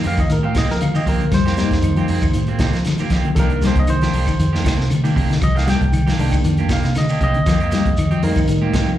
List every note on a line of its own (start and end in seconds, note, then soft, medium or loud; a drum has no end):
0.00 0.20 D#3 medium
0.00 0.15 F3 medium
0.00 open hi-hat medium
0.04 0.25 F2 loud
0.04 0.21 A#3 medium
0.04 0.21 C4 medium
0.04 0.21 G4 medium
0.04 0.19 F5 loud
0.04 high conga medium
0.04 low conga medium
0.04 shekere soft
0.18 0.28 D#3 medium
0.18 0.30 D#5 medium
0.18 kick medium
0.18 closed hi-hat soft
0.18 claves medium
0.18 shekere medium
0.30 0.61 A2 medium
0.30 0.52 D#3 medium
0.30 0.44 A#4 medium
0.30 closed hi-hat medium
0.30 high conga soft
0.30 shekere medium
0.43 0.54 C4 soft
0.43 0.55 G4 medium
0.43 0.56 F5 medium
0.43 high conga medium
0.55 0.78 C3 medium
0.55 0.72 D#3 medium
0.55 0.72 A#3 medium
0.55 0.72 C4 medium
0.55 0.72 G4 medium
0.55 0.70 D#5 medium
0.55 kick medium
0.55 snare medium
0.55 closed hi-hat medium
0.55 high conga medium
0.55 claves medium
0.55 shekere medium
0.70 0.99 F3 medium
0.70 0.82 A#4 medium
0.70 snare soft
0.70 shekere soft
0.81 0.94 D3 medium
0.81 0.94 F5 medium
0.81 closed hi-hat medium
0.81 high conga medium
0.81 claves medium
0.81 shekere medium
0.95 1.17 D#3 medium
0.95 1.05 A#3 soft
0.95 1.06 C4 soft
0.95 1.06 G4 medium
0.95 1.07 D#5 medium
0.95 closed hi-hat soft
0.95 shekere medium
1.06 1.23 D#3 medium
1.06 1.26 F3 medium
1.06 1.23 A#3 medium
1.06 1.23 C4 medium
1.06 1.23 G4 medium
1.06 1.33 A#4 medium
1.06 kick medium
1.06 open hi-hat medium
1.06 low conga medium
1.06 shekere soft
1.21 1.31 D3 medium
1.21 closed hi-hat soft
1.32 1.63 F2 loud
1.32 1.54 G3 medium
1.32 2.83 C5 loud
1.32 kick medium
1.32 snare soft
1.32 closed hi-hat medium
1.32 high conga soft
1.32 claves medium
1.32 shekere medium
1.46 1.57 A#3 soft
1.46 1.57 C4 soft
1.46 1.58 G4 medium
1.46 snare soft
1.46 closed hi-hat soft
1.57 1.80 G3 medium
1.57 2.31 G3 medium
1.57 1.74 A#3 medium
1.57 2.32 A#3 medium
1.57 1.74 C4 medium
1.57 2.32 D#4 medium
1.57 1.75 G4 medium
1.57 snare soft
1.57 closed hi-hat soft
1.57 high conga loud
1.57 shekere medium
1.71 2.00 F2 medium
1.71 kick medium
1.71 snare soft
1.71 closed hi-hat soft
1.71 low conga medium
1.71 shekere soft
1.82 1.95 D#3 medium
1.82 closed hi-hat medium
1.82 high conga soft
1.82 claves medium
1.82 shekere medium
1.96 2.19 F3 medium
1.96 2.08 A#3 soft
1.96 2.09 C4 medium
1.96 2.09 G4 medium
1.96 closed hi-hat soft
2.08 2.29 F2 medium
2.08 2.26 D#3 medium
2.08 2.26 A#3 medium
2.08 2.26 C4 medium
2.08 open hi-hat medium
2.08 high conga medium
2.08 low conga medium
2.08 shekere soft
2.22 2.33 D#3 medium
2.22 kick medium
2.22 closed hi-hat soft
2.22 claves medium
2.22 shekere medium
2.33 2.66 A2 medium
2.33 2.56 D#3 medium
2.33 closed hi-hat medium
2.33 high conga soft
2.33 shekere medium
2.47 2.59 A#3 soft
2.47 2.60 C4 medium
2.47 muted clean electric guitar stroke medium
2.47 closed hi-hat soft
2.47 high conga medium
2.59 2.82 C3 medium
2.59 2.77 D#3 medium
2.59 2.77 A#3 medium
2.59 2.77 C4 medium
2.59 2.77 G4 medium
2.59 kick medium
2.59 snare medium
2.59 closed hi-hat medium
2.59 high conga medium
2.59 claves medium
2.59 shekere medium
2.73 3.03 F3 medium
2.73 snare soft
2.73 closed hi-hat soft
2.73 shekere soft
2.85 2.98 D3 medium
2.85 snare soft
2.85 closed hi-hat medium
2.85 high conga medium
2.85 claves medium
2.85 shekere medium
2.98 3.22 D#3 medium
2.98 3.11 A#3 medium
2.98 3.11 C4 medium
2.98 3.12 G4 medium
2.98 closed hi-hat soft
2.98 high conga medium
2.98 shekere medium
3.10 3.28 D#3 medium
3.10 3.31 F3 medium
3.10 3.28 A#3 medium
3.10 3.28 C4 medium
3.10 3.28 G4 medium
3.10 kick medium
3.10 snare soft
3.10 closed hi-hat medium
3.10 low conga medium
3.10 shekere soft
3.24 3.35 D3 medium
3.24 closed hi-hat soft
3.24 low conga medium
3.35 3.67 C2 loud
3.35 4.10 D#3 medium
3.35 3.51 D#3 medium
3.35 3.59 F3 medium
3.35 3.51 A#3 medium
3.35 4.10 A#3 medium
3.35 4.10 D4 medium
3.35 3.50 D4 medium
3.35 3.51 G4 medium
3.35 3.38 A4 medium
3.35 kick medium
3.35 closed hi-hat medium
3.35 claves medium
3.35 shekere medium
3.39 3.63 A#4 medium
3.50 3.63 D4 soft
3.50 muted clean electric guitar stroke soft
3.50 closed hi-hat soft
3.62 3.79 D#3 medium
3.62 3.85 G3 medium
3.62 3.80 A#3 medium
3.62 3.80 D4 medium
3.62 3.80 G4 medium
3.62 snare soft
3.62 closed hi-hat medium
3.62 high conga loud
3.62 shekere medium
3.67 3.78 C5 medium
3.76 4.05 C2 medium
3.76 3.89 D#5 medium
3.76 kick medium
3.76 closed hi-hat soft
3.76 low conga medium
3.76 shekere soft
3.87 4.00 D#3 medium
3.87 4.88 C5 loud
3.87 closed hi-hat medium
3.87 high conga soft
3.87 claves medium
3.87 shekere medium
4.01 4.24 F3 medium
4.01 4.13 A#3 soft
4.01 4.14 D4 soft
4.01 4.14 G4 medium
4.01 snare soft
4.01 closed hi-hat soft
4.13 4.33 C2 medium
4.13 4.30 D#3 medium
4.13 4.30 A#3 medium
4.13 4.31 D4 medium
4.13 4.31 G4 medium
4.13 open hi-hat medium
4.13 high conga medium
4.13 low conga medium
4.13 shekere soft
4.27 4.38 D#3 medium
4.27 kick medium
4.27 closed hi-hat soft
4.27 claves medium
4.27 shekere medium
4.38 4.70 F2 medium
4.38 4.62 D#3 medium
4.38 closed hi-hat medium
4.38 high conga soft
4.38 shekere medium
4.53 4.64 A#3 medium
4.53 4.65 D4 medium
4.53 4.65 G4 medium
4.53 snare soft
4.53 high conga medium
4.64 4.87 C3 medium
4.64 4.81 D#3 medium
4.64 4.81 A#3 medium
4.64 4.82 D4 medium
4.64 4.82 G4 medium
4.64 kick medium
4.64 snare medium
4.64 closed hi-hat medium
4.64 high conga loud
4.64 claves medium
4.64 shekere medium
4.78 5.08 C3 medium
4.78 snare soft
4.78 shekere soft
4.90 5.03 D3 medium
4.90 closed hi-hat medium
4.90 high conga medium
4.90 claves medium
4.90 shekere medium
5.04 5.26 D#3 medium
5.04 5.15 A#3 soft
5.04 5.15 D4 medium
5.04 5.15 G4 medium
5.04 closed hi-hat soft
5.04 high conga medium
5.04 shekere medium
5.15 5.36 C3 medium
5.15 5.32 D#3 medium
5.15 5.32 A#3 medium
5.15 5.32 D4 medium
5.15 5.33 G4 medium
5.15 kick medium
5.15 open hi-hat medium
5.15 low conga medium
5.15 shekere soft
5.30 5.40 D3 medium
5.30 snare soft
5.30 closed hi-hat soft
5.42 5.73 C2 loud
5.42 5.64 F3 medium
5.42 5.56 D#5 loud
5.42 kick medium
5.42 closed hi-hat medium
5.42 high conga soft
5.42 claves medium
5.42 shekere medium
5.55 5.66 A#3 soft
5.55 5.66 D4 soft
5.55 5.67 G4 medium
5.55 5.67 F5 medium
5.55 snare soft
5.55 closed hi-hat soft
5.65 5.83 D#3 medium
5.65 5.89 G3 medium
5.65 5.83 A#3 medium
5.65 5.84 D4 medium
5.65 5.84 G4 medium
5.65 5.68 F#5 medium
5.65 closed hi-hat medium
5.65 high conga loud
5.65 shekere medium
5.69 6.68 G5 loud
5.69 snare soft
5.81 6.10 C2 medium
5.81 kick medium
5.81 closed hi-hat soft
5.81 low conga medium
5.81 shekere soft
5.93 6.05 D#3 medium
5.93 closed hi-hat medium
5.93 high conga soft
5.93 claves medium
5.93 shekere medium
6.06 6.29 F3 medium
6.06 6.18 A#3 soft
6.06 6.19 D4 soft
6.06 6.18 G4 medium
6.06 snare soft
6.06 closed hi-hat soft
6.18 6.38 C2 loud
6.18 6.35 D#3 medium
6.18 6.92 D#3 medium
6.18 6.35 A#3 medium
6.18 6.92 A#3 medium
6.18 6.35 D4 medium
6.18 6.92 D4 medium
6.18 6.35 G4 medium
6.18 open hi-hat medium
6.18 high conga medium
6.18 low conga medium
6.18 shekere soft
6.32 6.43 D#3 medium
6.32 kick medium
6.32 closed hi-hat soft
6.32 claves medium
6.32 shekere medium
6.44 6.75 F2 medium
6.44 6.67 D#3 medium
6.44 closed hi-hat medium
6.44 shekere medium
6.57 6.69 A#3 soft
6.57 6.70 D4 soft
6.57 6.70 G4 medium
6.57 closed hi-hat soft
6.57 high conga medium
6.69 6.92 C3 medium
6.69 6.86 D#3 medium
6.69 6.86 A#3 medium
6.69 6.87 G4 medium
6.69 6.96 F5 medium
6.69 kick medium
6.69 snare medium
6.69 closed hi-hat medium
6.69 high conga medium
6.69 claves medium
6.69 shekere medium
6.83 7.13 C3 medium
6.83 snare soft
6.83 closed hi-hat soft
6.83 shekere soft
6.95 7.08 D3 medium
6.95 7.21 D#5 medium
6.95 snare soft
6.95 closed hi-hat medium
6.95 high conga medium
6.95 claves medium
6.95 shekere medium
7.09 7.21 A#3 soft
7.09 7.21 D4 medium
7.09 7.21 G4 medium
7.09 closed hi-hat soft
7.09 shekere medium
7.21 7.40 C3 loud
7.21 7.37 D#3 medium
7.21 7.37 A#3 medium
7.21 7.38 G4 medium
7.21 8.21 D#5 medium
7.21 muted clean electric guitar stroke medium
7.21 kick medium
7.21 closed hi-hat medium
7.21 low conga medium
7.34 7.46 D3 medium
7.34 closed hi-hat soft
7.46 7.77 F2 loud
7.46 7.60 D#3 medium
7.46 7.69 F3 medium
7.46 7.60 A#3 medium
7.46 7.60 C4 medium
7.46 7.59 G4 medium
7.46 kick medium
7.46 snare soft
7.46 closed hi-hat medium
7.46 claves medium
7.46 shekere medium
7.60 7.71 A#3 soft
7.60 7.72 C4 soft
7.60 7.72 G4 medium
7.60 closed hi-hat soft
7.71 7.88 D#3 medium
7.71 7.94 G3 medium
7.71 7.88 A#3 medium
7.71 7.89 G4 medium
7.71 snare soft
7.71 closed hi-hat medium
7.71 high conga loud
7.71 shekere medium
7.85 8.14 F2 medium
7.85 kick medium
7.85 closed hi-hat soft
7.85 low conga medium
7.85 shekere soft
7.97 8.10 D#3 medium
7.97 closed hi-hat medium
7.97 high conga soft
7.97 claves medium
7.97 shekere medium
8.11 8.33 F3 medium
8.11 8.22 C4 medium
8.11 8.23 G4 medium
8.11 closed hi-hat soft
8.23 8.43 F2 loud
8.23 8.39 D#3 medium
8.23 8.98 G3 medium
8.23 8.39 A#3 medium
8.23 8.39 C4 medium
8.23 8.98 D#4 medium
8.23 8.98 A#4 medium
8.23 muted clean electric guitar stroke medium
8.23 open hi-hat medium
8.23 high conga medium
8.23 low conga medium
8.23 shekere soft
8.36 8.47 D#3 medium
8.36 kick medium
8.36 closed hi-hat soft
8.36 claves medium
8.36 shekere medium
8.48 8.79 A2 medium
8.48 8.71 D#3 medium
8.48 closed hi-hat medium
8.48 high conga soft
8.48 shekere medium
8.62 8.72 A#3 medium
8.62 8.73 C4 medium
8.62 8.73 G4 medium
8.62 high conga medium
8.73 8.96 C3 medium
8.73 8.89 D#3 medium
8.73 8.90 A#3 medium
8.73 8.90 C4 medium
8.73 8.90 G4 medium
8.73 kick medium
8.73 snare medium
8.73 closed hi-hat medium
8.73 high conga loud
8.73 claves medium
8.73 shekere medium
8.87 8.98 F3 medium
8.87 shekere soft